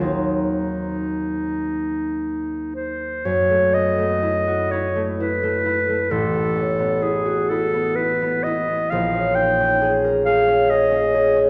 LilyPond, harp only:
<<
  \new Staff \with { instrumentName = "Harp" } { \time 6/8 \key ees \dorian \tempo 4. = 42 r2. | \key fis \dorian fis,16 a16 b16 a16 e'16 fis'16 e'16 a16 e'16 a16 e'16 a16 | a,,16 b16 cis'16 b16 e'16 fis'16 e'16 b16 e'16 b16 e'16 b16 | ais,,16 cis'16 dis'16 cis'16 gis'16 ais'16 gis'16 cis'16 gis'16 cis'16 gis'16 cis'16 | }
  \new Staff \with { instrumentName = "Harp" } { \time 6/8 \key ees \dorian <ees, ges bes c' ees'>2.~ | \key fis \dorian <ees, ges bes c' ees'>2. | r2. | r2. | }
>>